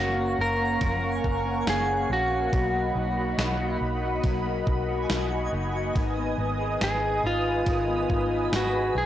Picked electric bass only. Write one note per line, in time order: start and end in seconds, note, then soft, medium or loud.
0.00 0.33 F#1 loud
0.39 0.76 F#1 loud
0.81 1.19 F#1 loud
1.24 1.62 F#1 medium
1.67 2.05 F#1 loud
2.10 2.47 A#1 loud
2.53 2.91 B1 loud
2.95 3.33 B1 loud
3.38 3.76 B1 loud
3.81 4.19 B1 medium
4.24 4.62 B1 medium
4.67 5.05 B1 medium
5.10 5.48 B1 loud
5.53 5.90 F#1 loud
5.96 6.33 G#1 loud
6.38 6.76 G#1 medium
6.81 7.19 G#1 loud
7.24 7.62 G#1 medium
7.67 8.04 G#1 loud
8.10 8.47 G#1 medium
8.52 8.90 G#1 loud
8.95 9.06 B1 loud